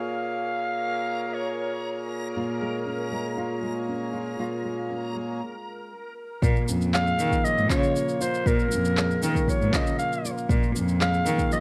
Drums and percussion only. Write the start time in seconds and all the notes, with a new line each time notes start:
6.42 kick, shaker
6.56 shaker
6.68 shaker
6.81 shaker
6.94 clap, shaker
7.07 shaker
7.19 shaker
7.31 kick, shaker
7.45 shaker
7.58 shaker
7.70 kick, clap, shaker
7.83 shaker
7.96 shaker
8.09 shaker
8.21 shaker
8.34 shaker
8.46 kick, shaker
8.59 shaker
8.72 shaker
8.85 shaker
8.97 clap, shaker
9.11 shaker
9.23 shaker
9.35 kick, shaker
9.48 kick, shaker
9.62 shaker
9.73 kick, clap, shaker
9.87 shaker
9.99 shaker
10.13 shaker
10.25 shaker
10.38 shaker
10.49 kick, shaker
10.63 shaker
10.76 shaker
10.88 shaker
11.01 clap, shaker
11.14 shaker
11.26 shaker
11.38 kick, shaker
11.52 shaker